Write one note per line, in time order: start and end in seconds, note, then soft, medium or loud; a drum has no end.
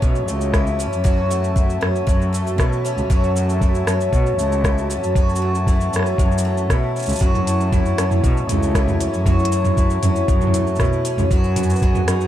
0.00 1.03 F#2 medium
0.00 0.19 B2 medium
0.00 0.53 E3 medium
0.00 0.28 A3 medium
0.00 0.78 C#4 medium
0.00 1.04 F#4 medium
0.00 7.16 F#4 medium
0.00 7.16 E5 medium
0.00 11.27 A5 medium
0.00 kick medium
0.00 shaker soft
0.15 shaker soft
0.28 0.85 C#2 medium
0.28 1.30 A3 medium
0.28 shaker medium
0.41 shaker soft
0.54 1.55 E3 medium
0.54 kick medium
0.54 cross-stick medium
0.54 shaker soft
0.67 shaker soft
0.79 1.81 C#4 medium
0.79 shaker medium
0.92 1.74 F#2 medium
0.92 shaker soft
1.04 2.05 F#2 medium
1.04 3.09 F#4 medium
1.04 kick loud
1.04 shaker soft
1.30 2.32 A3 medium
1.30 shaker medium
1.44 shaker soft
1.56 2.58 E3 medium
1.56 kick medium
1.56 shaker soft
1.70 shaker soft
1.81 1.98 F#2 medium
1.81 2.84 C#4 medium
1.81 cross-stick medium
1.96 shaker soft
2.07 3.09 F#2 medium
2.07 2.51 F#2 medium
2.07 kick medium
2.07 shaker soft
2.22 shaker soft
2.33 3.35 A3 medium
2.33 shaker medium
2.47 shaker soft
2.58 2.67 B2 medium
2.58 3.61 E3 medium
2.58 kick medium
2.58 cross-stick medium
2.58 shaker soft
2.73 shaker soft
2.85 3.87 C#4 medium
2.85 shaker medium
2.97 3.06 C#2 medium
2.97 shaker soft
3.10 4.12 F#2 medium
3.10 3.80 F#2 medium
3.10 5.16 F#4 medium
3.10 kick loud
3.10 shaker soft
3.24 shaker soft
3.36 4.38 A3 medium
3.36 shaker medium
3.50 shaker soft
3.61 4.64 E3 medium
3.61 kick medium
3.61 shaker soft
3.75 shaker soft
3.87 4.03 F#2 medium
3.87 4.89 C#4 medium
3.87 cross-stick medium
3.87 shaker medium
4.01 shaker soft
4.13 5.15 F#2 medium
4.13 4.29 B2 medium
4.13 kick medium
4.13 shaker soft
4.26 shaker soft
4.38 4.95 C#2 medium
4.38 5.41 A3 medium
4.38 shaker medium
4.52 shaker soft
4.64 5.67 E3 medium
4.64 kick loud
4.64 cross-stick medium
4.64 shaker soft
4.78 shaker soft
4.90 5.93 C#4 medium
4.90 shaker medium
5.02 5.85 F#2 medium
5.02 shaker soft
5.15 6.18 F#2 medium
5.15 7.21 F#4 medium
5.15 kick loud
5.15 shaker soft
5.29 shaker soft
5.36 shaker medium
5.42 6.44 A3 medium
5.55 shaker soft
5.67 6.70 E3 medium
5.67 kick loud
5.67 shaker soft
5.81 shaker soft
5.92 6.09 F#2 medium
5.92 6.96 C#4 medium
5.92 cross-stick medium
5.92 shaker medium
5.99 cross-stick soft
6.03 cross-stick soft
6.03 shaker soft
6.18 6.62 F#2 medium
6.18 7.20 F#2 medium
6.18 kick loud
6.18 shaker soft
6.32 shaker soft
6.38 shaker medium
6.45 7.47 A3 medium
6.57 shaker soft
6.70 6.78 B2 medium
6.70 7.72 E3 medium
6.70 kick loud
6.70 cross-stick medium
6.70 shaker soft
6.96 7.98 C#4 medium
6.96 shaker soft
6.99 shaker soft
7.02 shaker soft
7.06 7.16 C#2 medium
7.06 shaker soft
7.09 shaker medium
7.12 shaker medium
7.16 shaker medium
7.19 7.90 F#2 medium
7.19 8.23 F#2 medium
7.19 11.27 E4 medium
7.19 9.27 F#4 medium
7.19 11.27 C#5 medium
7.19 kick loud
7.19 shaker medium
7.35 mid tom medium
7.35 shaker soft
7.47 8.48 A3 medium
7.47 closed hi-hat medium
7.47 shaker medium
7.61 shaker soft
7.72 8.74 E3 medium
7.72 kick medium
7.72 mid tom medium
7.72 shaker soft
7.86 shaker soft
7.98 8.14 F#2 medium
7.98 9.00 C#4 medium
7.98 cross-stick medium
7.98 closed hi-hat medium
7.98 shaker medium
8.11 mid tom medium
8.11 shaker soft
8.23 9.25 F#2 medium
8.23 8.40 B2 medium
8.23 kick medium
8.23 shaker soft
8.37 shaker soft
8.49 9.05 C#2 medium
8.49 9.51 A3 medium
8.49 closed hi-hat medium
8.49 mid tom medium
8.49 shaker medium
8.63 shaker soft
8.75 9.77 E3 medium
8.75 kick loud
8.75 cross-stick medium
8.75 shaker soft
8.88 mid tom medium
8.88 shaker soft
9.00 10.02 C#4 medium
9.00 closed hi-hat medium
9.00 shaker medium
9.13 9.95 F#2 medium
9.13 shaker soft
9.26 10.27 F#2 medium
9.26 11.32 F#4 medium
9.26 kick medium
9.26 mid tom medium
9.26 shaker soft
9.39 shaker soft
9.45 closed hi-hat medium
9.52 10.53 A3 medium
9.52 shaker medium
9.64 mid tom medium
9.64 shaker soft
9.77 10.79 E3 medium
9.77 kick loud
9.77 shaker soft
9.90 shaker soft
10.02 10.19 F#2 medium
10.02 11.05 C#4 medium
10.02 closed hi-hat medium
10.02 mid tom medium
10.02 shaker medium
10.16 shaker soft
10.28 11.30 F#2 medium
10.28 10.72 F#2 medium
10.28 kick medium
10.28 shaker soft
10.41 mid tom medium
10.41 shaker soft
10.47 mid tom medium
10.54 11.36 A3 medium
10.54 closed hi-hat medium
10.54 mid tom soft
10.54 shaker medium
10.60 mid tom soft
10.67 shaker soft
10.76 10.88 B2 medium
10.76 kick medium
10.76 shaker soft
10.80 11.36 E3 medium
10.80 cross-stick medium
10.80 mid tom medium
10.80 shaker soft
10.84 shaker soft
10.93 shaker soft
11.05 11.36 C#4 medium
11.05 closed hi-hat medium
11.05 shaker medium
11.18 11.26 C#2 medium
11.18 mid tom medium
11.18 shaker soft
11.30 12.00 F#2 medium
11.30 12.27 F#2 medium
11.30 12.27 F#4 medium
11.30 12.27 B4 medium
11.30 12.27 G#5 medium
11.30 kick loud
11.30 shaker soft
11.44 shaker soft
11.56 12.27 B3 medium
11.56 closed hi-hat medium
11.56 mid tom medium
11.56 shaker medium
11.63 shaker medium
11.70 shaker soft
11.73 shaker soft
11.76 shaker soft
11.79 kick medium
11.79 shaker soft
11.82 12.27 G#3 medium
11.82 shaker soft
11.95 mid tom medium
11.95 shaker soft
12.07 12.24 F#2 medium
12.07 12.27 D#4 medium
12.07 cross-stick medium
12.07 closed hi-hat medium
12.07 shaker medium
12.21 shaker soft